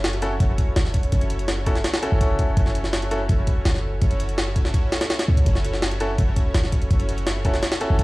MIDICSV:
0, 0, Header, 1, 5, 480
1, 0, Start_track
1, 0, Key_signature, 3, "minor"
1, 0, Tempo, 361446
1, 1494, Time_signature, 4, 2, 24, 8
1, 10672, End_track
2, 0, Start_track
2, 0, Title_t, "Analog synth pad"
2, 0, Program_c, 0, 89
2, 0, Note_on_c, 0, 61, 90
2, 0, Note_on_c, 0, 64, 86
2, 0, Note_on_c, 0, 66, 85
2, 0, Note_on_c, 0, 69, 89
2, 0, Note_on_c, 0, 73, 104
2, 1463, Note_off_c, 0, 69, 0
2, 1464, Note_off_c, 0, 61, 0
2, 1464, Note_off_c, 0, 64, 0
2, 1464, Note_off_c, 0, 66, 0
2, 1465, Note_off_c, 0, 73, 0
2, 1492, Note_on_c, 0, 64, 91
2, 1492, Note_on_c, 0, 69, 95
2, 1492, Note_on_c, 0, 73, 112
2, 1493, Note_on_c, 0, 61, 97
2, 1493, Note_on_c, 0, 66, 91
2, 1824, Note_off_c, 0, 73, 0
2, 1825, Note_off_c, 0, 61, 0
2, 1825, Note_off_c, 0, 64, 0
2, 1825, Note_off_c, 0, 66, 0
2, 1825, Note_off_c, 0, 69, 0
2, 1846, Note_on_c, 0, 64, 87
2, 1846, Note_on_c, 0, 66, 87
2, 1846, Note_on_c, 0, 73, 102
2, 1847, Note_on_c, 0, 61, 93
2, 1847, Note_on_c, 0, 69, 86
2, 3381, Note_off_c, 0, 64, 0
2, 3381, Note_off_c, 0, 66, 0
2, 3381, Note_off_c, 0, 69, 0
2, 3381, Note_off_c, 0, 73, 0
2, 3382, Note_off_c, 0, 61, 0
2, 3411, Note_on_c, 0, 66, 90
2, 3411, Note_on_c, 0, 69, 94
2, 3412, Note_on_c, 0, 73, 109
2, 3413, Note_on_c, 0, 64, 90
2, 3414, Note_on_c, 0, 61, 103
2, 3744, Note_off_c, 0, 66, 0
2, 3744, Note_off_c, 0, 69, 0
2, 3745, Note_off_c, 0, 64, 0
2, 3745, Note_off_c, 0, 73, 0
2, 3746, Note_off_c, 0, 61, 0
2, 3779, Note_on_c, 0, 61, 98
2, 3781, Note_on_c, 0, 69, 86
2, 3781, Note_on_c, 0, 73, 103
2, 3782, Note_on_c, 0, 64, 84
2, 3784, Note_on_c, 0, 66, 84
2, 5308, Note_off_c, 0, 61, 0
2, 5309, Note_off_c, 0, 64, 0
2, 5309, Note_off_c, 0, 69, 0
2, 5309, Note_off_c, 0, 73, 0
2, 5310, Note_off_c, 0, 66, 0
2, 5334, Note_on_c, 0, 69, 93
2, 5337, Note_on_c, 0, 66, 91
2, 5338, Note_on_c, 0, 61, 97
2, 5339, Note_on_c, 0, 64, 90
2, 5339, Note_on_c, 0, 73, 109
2, 5666, Note_off_c, 0, 69, 0
2, 5667, Note_off_c, 0, 66, 0
2, 5668, Note_off_c, 0, 61, 0
2, 5668, Note_off_c, 0, 64, 0
2, 5668, Note_off_c, 0, 73, 0
2, 5697, Note_on_c, 0, 69, 86
2, 5700, Note_on_c, 0, 61, 97
2, 5700, Note_on_c, 0, 66, 88
2, 5701, Note_on_c, 0, 64, 85
2, 5702, Note_on_c, 0, 73, 105
2, 7227, Note_off_c, 0, 69, 0
2, 7228, Note_off_c, 0, 61, 0
2, 7228, Note_off_c, 0, 66, 0
2, 7229, Note_off_c, 0, 64, 0
2, 7229, Note_off_c, 0, 73, 0
2, 7256, Note_on_c, 0, 69, 92
2, 7256, Note_on_c, 0, 73, 115
2, 7258, Note_on_c, 0, 66, 93
2, 7259, Note_on_c, 0, 64, 89
2, 7260, Note_on_c, 0, 61, 103
2, 7587, Note_off_c, 0, 69, 0
2, 7587, Note_off_c, 0, 73, 0
2, 7588, Note_off_c, 0, 64, 0
2, 7588, Note_off_c, 0, 66, 0
2, 7589, Note_off_c, 0, 61, 0
2, 7615, Note_on_c, 0, 69, 86
2, 7615, Note_on_c, 0, 73, 107
2, 7617, Note_on_c, 0, 64, 89
2, 7619, Note_on_c, 0, 61, 91
2, 7620, Note_on_c, 0, 66, 84
2, 9146, Note_off_c, 0, 69, 0
2, 9146, Note_off_c, 0, 73, 0
2, 9147, Note_off_c, 0, 64, 0
2, 9148, Note_off_c, 0, 61, 0
2, 9148, Note_off_c, 0, 66, 0
2, 9172, Note_on_c, 0, 73, 109
2, 9173, Note_on_c, 0, 64, 95
2, 9175, Note_on_c, 0, 69, 93
2, 9177, Note_on_c, 0, 61, 98
2, 9177, Note_on_c, 0, 66, 90
2, 9504, Note_off_c, 0, 73, 0
2, 9505, Note_off_c, 0, 64, 0
2, 9506, Note_off_c, 0, 69, 0
2, 9507, Note_off_c, 0, 61, 0
2, 9507, Note_off_c, 0, 66, 0
2, 9535, Note_on_c, 0, 64, 83
2, 9535, Note_on_c, 0, 73, 103
2, 9536, Note_on_c, 0, 61, 93
2, 9537, Note_on_c, 0, 66, 86
2, 9538, Note_on_c, 0, 69, 86
2, 10672, Note_off_c, 0, 61, 0
2, 10672, Note_off_c, 0, 64, 0
2, 10672, Note_off_c, 0, 66, 0
2, 10672, Note_off_c, 0, 69, 0
2, 10672, Note_off_c, 0, 73, 0
2, 10672, End_track
3, 0, Start_track
3, 0, Title_t, "Grand piano"
3, 0, Program_c, 1, 0
3, 295, Note_on_c, 1, 61, 94
3, 295, Note_on_c, 1, 64, 89
3, 295, Note_on_c, 1, 66, 88
3, 295, Note_on_c, 1, 69, 106
3, 404, Note_off_c, 1, 61, 0
3, 404, Note_off_c, 1, 64, 0
3, 404, Note_off_c, 1, 66, 0
3, 404, Note_off_c, 1, 69, 0
3, 2212, Note_on_c, 1, 61, 84
3, 2212, Note_on_c, 1, 64, 75
3, 2212, Note_on_c, 1, 69, 90
3, 2213, Note_on_c, 1, 66, 78
3, 2322, Note_off_c, 1, 61, 0
3, 2322, Note_off_c, 1, 64, 0
3, 2322, Note_off_c, 1, 69, 0
3, 2323, Note_off_c, 1, 66, 0
3, 2691, Note_on_c, 1, 69, 110
3, 2692, Note_on_c, 1, 61, 103
3, 2692, Note_on_c, 1, 64, 91
3, 2693, Note_on_c, 1, 66, 91
3, 4104, Note_off_c, 1, 61, 0
3, 4104, Note_off_c, 1, 64, 0
3, 4104, Note_off_c, 1, 69, 0
3, 4105, Note_off_c, 1, 66, 0
3, 4135, Note_on_c, 1, 64, 88
3, 4136, Note_on_c, 1, 66, 88
3, 4136, Note_on_c, 1, 69, 107
3, 4137, Note_on_c, 1, 61, 93
3, 4244, Note_off_c, 1, 64, 0
3, 4244, Note_off_c, 1, 66, 0
3, 4244, Note_off_c, 1, 69, 0
3, 4245, Note_off_c, 1, 61, 0
3, 7976, Note_on_c, 1, 64, 86
3, 7976, Note_on_c, 1, 69, 107
3, 7977, Note_on_c, 1, 66, 84
3, 7978, Note_on_c, 1, 61, 97
3, 8084, Note_off_c, 1, 64, 0
3, 8084, Note_off_c, 1, 69, 0
3, 8085, Note_off_c, 1, 61, 0
3, 8085, Note_off_c, 1, 66, 0
3, 9894, Note_on_c, 1, 66, 77
3, 9895, Note_on_c, 1, 61, 85
3, 9896, Note_on_c, 1, 64, 74
3, 9896, Note_on_c, 1, 69, 91
3, 10003, Note_off_c, 1, 66, 0
3, 10004, Note_off_c, 1, 61, 0
3, 10004, Note_off_c, 1, 64, 0
3, 10004, Note_off_c, 1, 69, 0
3, 10372, Note_on_c, 1, 61, 99
3, 10372, Note_on_c, 1, 64, 94
3, 10372, Note_on_c, 1, 66, 94
3, 10372, Note_on_c, 1, 69, 113
3, 10672, Note_off_c, 1, 61, 0
3, 10672, Note_off_c, 1, 64, 0
3, 10672, Note_off_c, 1, 66, 0
3, 10672, Note_off_c, 1, 69, 0
3, 10672, End_track
4, 0, Start_track
4, 0, Title_t, "808-style bass"
4, 0, Program_c, 2, 38
4, 0, Note_on_c, 2, 30, 96
4, 516, Note_off_c, 2, 30, 0
4, 534, Note_on_c, 2, 30, 94
4, 995, Note_off_c, 2, 30, 0
4, 1013, Note_on_c, 2, 30, 108
4, 1475, Note_off_c, 2, 30, 0
4, 1494, Note_on_c, 2, 30, 101
4, 2435, Note_off_c, 2, 30, 0
4, 2815, Note_on_c, 2, 31, 101
4, 2934, Note_on_c, 2, 30, 97
4, 2954, Note_off_c, 2, 31, 0
4, 3395, Note_off_c, 2, 30, 0
4, 3412, Note_on_c, 2, 30, 99
4, 4354, Note_off_c, 2, 30, 0
4, 4374, Note_on_c, 2, 30, 98
4, 4835, Note_off_c, 2, 30, 0
4, 4853, Note_on_c, 2, 30, 110
4, 5314, Note_off_c, 2, 30, 0
4, 5335, Note_on_c, 2, 30, 102
4, 6275, Note_off_c, 2, 30, 0
4, 7016, Note_on_c, 2, 37, 95
4, 7231, Note_off_c, 2, 37, 0
4, 7257, Note_on_c, 2, 30, 99
4, 8196, Note_off_c, 2, 30, 0
4, 8214, Note_on_c, 2, 30, 98
4, 8675, Note_off_c, 2, 30, 0
4, 8692, Note_on_c, 2, 30, 109
4, 9154, Note_off_c, 2, 30, 0
4, 9172, Note_on_c, 2, 30, 100
4, 10114, Note_off_c, 2, 30, 0
4, 10493, Note_on_c, 2, 31, 98
4, 10611, Note_on_c, 2, 30, 97
4, 10631, Note_off_c, 2, 31, 0
4, 10672, Note_off_c, 2, 30, 0
4, 10672, End_track
5, 0, Start_track
5, 0, Title_t, "Drums"
5, 55, Note_on_c, 9, 38, 118
5, 55, Note_on_c, 9, 42, 84
5, 175, Note_off_c, 9, 42, 0
5, 175, Note_on_c, 9, 42, 45
5, 188, Note_off_c, 9, 38, 0
5, 292, Note_off_c, 9, 42, 0
5, 292, Note_on_c, 9, 42, 69
5, 425, Note_off_c, 9, 42, 0
5, 533, Note_on_c, 9, 42, 92
5, 534, Note_on_c, 9, 36, 114
5, 666, Note_off_c, 9, 42, 0
5, 667, Note_off_c, 9, 36, 0
5, 772, Note_on_c, 9, 42, 66
5, 773, Note_on_c, 9, 36, 92
5, 905, Note_off_c, 9, 42, 0
5, 906, Note_off_c, 9, 36, 0
5, 1011, Note_on_c, 9, 38, 118
5, 1011, Note_on_c, 9, 42, 91
5, 1131, Note_off_c, 9, 38, 0
5, 1131, Note_on_c, 9, 38, 37
5, 1144, Note_off_c, 9, 42, 0
5, 1248, Note_on_c, 9, 42, 73
5, 1252, Note_on_c, 9, 36, 102
5, 1264, Note_off_c, 9, 38, 0
5, 1370, Note_off_c, 9, 42, 0
5, 1370, Note_on_c, 9, 42, 44
5, 1384, Note_off_c, 9, 36, 0
5, 1489, Note_off_c, 9, 42, 0
5, 1489, Note_on_c, 9, 42, 92
5, 1492, Note_on_c, 9, 36, 110
5, 1611, Note_off_c, 9, 42, 0
5, 1611, Note_on_c, 9, 42, 42
5, 1625, Note_off_c, 9, 36, 0
5, 1727, Note_off_c, 9, 42, 0
5, 1727, Note_on_c, 9, 42, 69
5, 1849, Note_off_c, 9, 42, 0
5, 1849, Note_on_c, 9, 42, 43
5, 1966, Note_off_c, 9, 42, 0
5, 1966, Note_on_c, 9, 38, 116
5, 1966, Note_on_c, 9, 42, 86
5, 2099, Note_off_c, 9, 38, 0
5, 2099, Note_off_c, 9, 42, 0
5, 2210, Note_on_c, 9, 42, 66
5, 2212, Note_on_c, 9, 36, 93
5, 2330, Note_on_c, 9, 38, 49
5, 2343, Note_off_c, 9, 42, 0
5, 2344, Note_off_c, 9, 36, 0
5, 2448, Note_off_c, 9, 38, 0
5, 2448, Note_on_c, 9, 38, 108
5, 2448, Note_on_c, 9, 42, 84
5, 2570, Note_off_c, 9, 38, 0
5, 2570, Note_off_c, 9, 42, 0
5, 2570, Note_on_c, 9, 38, 102
5, 2570, Note_on_c, 9, 42, 75
5, 2691, Note_off_c, 9, 42, 0
5, 2691, Note_on_c, 9, 42, 68
5, 2703, Note_off_c, 9, 38, 0
5, 2823, Note_off_c, 9, 42, 0
5, 2932, Note_on_c, 9, 42, 81
5, 2933, Note_on_c, 9, 36, 98
5, 3065, Note_off_c, 9, 42, 0
5, 3066, Note_off_c, 9, 36, 0
5, 3172, Note_on_c, 9, 42, 67
5, 3173, Note_on_c, 9, 36, 89
5, 3304, Note_off_c, 9, 42, 0
5, 3306, Note_off_c, 9, 36, 0
5, 3411, Note_on_c, 9, 42, 91
5, 3413, Note_on_c, 9, 36, 115
5, 3533, Note_on_c, 9, 38, 38
5, 3544, Note_off_c, 9, 42, 0
5, 3546, Note_off_c, 9, 36, 0
5, 3652, Note_on_c, 9, 42, 68
5, 3666, Note_off_c, 9, 38, 0
5, 3773, Note_on_c, 9, 38, 42
5, 3785, Note_off_c, 9, 42, 0
5, 3891, Note_off_c, 9, 38, 0
5, 3891, Note_on_c, 9, 38, 116
5, 3891, Note_on_c, 9, 42, 90
5, 4015, Note_off_c, 9, 42, 0
5, 4015, Note_on_c, 9, 42, 43
5, 4024, Note_off_c, 9, 38, 0
5, 4133, Note_off_c, 9, 42, 0
5, 4133, Note_on_c, 9, 42, 68
5, 4266, Note_off_c, 9, 42, 0
5, 4372, Note_on_c, 9, 42, 92
5, 4373, Note_on_c, 9, 36, 112
5, 4505, Note_off_c, 9, 42, 0
5, 4506, Note_off_c, 9, 36, 0
5, 4610, Note_on_c, 9, 42, 67
5, 4613, Note_on_c, 9, 36, 92
5, 4743, Note_off_c, 9, 42, 0
5, 4746, Note_off_c, 9, 36, 0
5, 4851, Note_on_c, 9, 38, 119
5, 4851, Note_on_c, 9, 42, 88
5, 4973, Note_off_c, 9, 38, 0
5, 4973, Note_on_c, 9, 38, 38
5, 4984, Note_off_c, 9, 42, 0
5, 5106, Note_off_c, 9, 38, 0
5, 5332, Note_on_c, 9, 42, 91
5, 5334, Note_on_c, 9, 36, 114
5, 5454, Note_off_c, 9, 42, 0
5, 5454, Note_on_c, 9, 42, 44
5, 5467, Note_off_c, 9, 36, 0
5, 5575, Note_off_c, 9, 42, 0
5, 5575, Note_on_c, 9, 42, 68
5, 5694, Note_off_c, 9, 42, 0
5, 5694, Note_on_c, 9, 42, 44
5, 5814, Note_off_c, 9, 42, 0
5, 5814, Note_on_c, 9, 38, 117
5, 5814, Note_on_c, 9, 42, 87
5, 5947, Note_off_c, 9, 38, 0
5, 5947, Note_off_c, 9, 42, 0
5, 6053, Note_on_c, 9, 42, 67
5, 6055, Note_on_c, 9, 36, 97
5, 6175, Note_on_c, 9, 38, 50
5, 6186, Note_off_c, 9, 42, 0
5, 6188, Note_off_c, 9, 36, 0
5, 6295, Note_on_c, 9, 36, 112
5, 6295, Note_on_c, 9, 42, 90
5, 6308, Note_off_c, 9, 38, 0
5, 6428, Note_off_c, 9, 36, 0
5, 6428, Note_off_c, 9, 42, 0
5, 6536, Note_on_c, 9, 38, 99
5, 6536, Note_on_c, 9, 42, 77
5, 6654, Note_off_c, 9, 38, 0
5, 6654, Note_off_c, 9, 42, 0
5, 6654, Note_on_c, 9, 38, 104
5, 6654, Note_on_c, 9, 42, 80
5, 6774, Note_off_c, 9, 38, 0
5, 6774, Note_off_c, 9, 42, 0
5, 6774, Note_on_c, 9, 38, 106
5, 6774, Note_on_c, 9, 42, 80
5, 6896, Note_off_c, 9, 38, 0
5, 6896, Note_off_c, 9, 42, 0
5, 6896, Note_on_c, 9, 38, 104
5, 6896, Note_on_c, 9, 42, 80
5, 7029, Note_off_c, 9, 38, 0
5, 7029, Note_off_c, 9, 42, 0
5, 7135, Note_on_c, 9, 36, 87
5, 7135, Note_on_c, 9, 42, 64
5, 7254, Note_off_c, 9, 42, 0
5, 7254, Note_on_c, 9, 42, 90
5, 7255, Note_off_c, 9, 36, 0
5, 7255, Note_on_c, 9, 36, 112
5, 7376, Note_on_c, 9, 38, 38
5, 7387, Note_off_c, 9, 36, 0
5, 7387, Note_off_c, 9, 42, 0
5, 7497, Note_on_c, 9, 42, 67
5, 7509, Note_off_c, 9, 38, 0
5, 7616, Note_on_c, 9, 38, 42
5, 7629, Note_off_c, 9, 42, 0
5, 7732, Note_off_c, 9, 38, 0
5, 7732, Note_on_c, 9, 38, 119
5, 7732, Note_on_c, 9, 42, 88
5, 7853, Note_off_c, 9, 42, 0
5, 7853, Note_on_c, 9, 42, 44
5, 7865, Note_off_c, 9, 38, 0
5, 7971, Note_off_c, 9, 42, 0
5, 7971, Note_on_c, 9, 42, 67
5, 8104, Note_off_c, 9, 42, 0
5, 8212, Note_on_c, 9, 42, 92
5, 8213, Note_on_c, 9, 36, 114
5, 8345, Note_off_c, 9, 42, 0
5, 8346, Note_off_c, 9, 36, 0
5, 8451, Note_on_c, 9, 42, 68
5, 8453, Note_on_c, 9, 36, 92
5, 8584, Note_off_c, 9, 42, 0
5, 8586, Note_off_c, 9, 36, 0
5, 8691, Note_on_c, 9, 38, 118
5, 8691, Note_on_c, 9, 42, 91
5, 8813, Note_off_c, 9, 38, 0
5, 8813, Note_on_c, 9, 38, 37
5, 8823, Note_off_c, 9, 42, 0
5, 8929, Note_on_c, 9, 42, 71
5, 8932, Note_on_c, 9, 36, 98
5, 8946, Note_off_c, 9, 38, 0
5, 9053, Note_off_c, 9, 42, 0
5, 9053, Note_on_c, 9, 42, 44
5, 9065, Note_off_c, 9, 36, 0
5, 9172, Note_off_c, 9, 42, 0
5, 9172, Note_on_c, 9, 36, 112
5, 9172, Note_on_c, 9, 42, 88
5, 9291, Note_off_c, 9, 42, 0
5, 9291, Note_on_c, 9, 42, 43
5, 9305, Note_off_c, 9, 36, 0
5, 9413, Note_off_c, 9, 42, 0
5, 9413, Note_on_c, 9, 42, 70
5, 9533, Note_off_c, 9, 42, 0
5, 9533, Note_on_c, 9, 42, 45
5, 9650, Note_off_c, 9, 42, 0
5, 9650, Note_on_c, 9, 38, 118
5, 9650, Note_on_c, 9, 42, 84
5, 9782, Note_off_c, 9, 38, 0
5, 9782, Note_off_c, 9, 42, 0
5, 9890, Note_on_c, 9, 42, 66
5, 9891, Note_on_c, 9, 36, 93
5, 10008, Note_on_c, 9, 38, 53
5, 10023, Note_off_c, 9, 42, 0
5, 10024, Note_off_c, 9, 36, 0
5, 10127, Note_off_c, 9, 38, 0
5, 10127, Note_on_c, 9, 38, 106
5, 10127, Note_on_c, 9, 42, 83
5, 10247, Note_off_c, 9, 38, 0
5, 10247, Note_off_c, 9, 42, 0
5, 10247, Note_on_c, 9, 38, 100
5, 10247, Note_on_c, 9, 42, 75
5, 10368, Note_off_c, 9, 42, 0
5, 10368, Note_on_c, 9, 42, 65
5, 10380, Note_off_c, 9, 38, 0
5, 10501, Note_off_c, 9, 42, 0
5, 10609, Note_on_c, 9, 42, 78
5, 10612, Note_on_c, 9, 36, 100
5, 10672, Note_off_c, 9, 36, 0
5, 10672, Note_off_c, 9, 42, 0
5, 10672, End_track
0, 0, End_of_file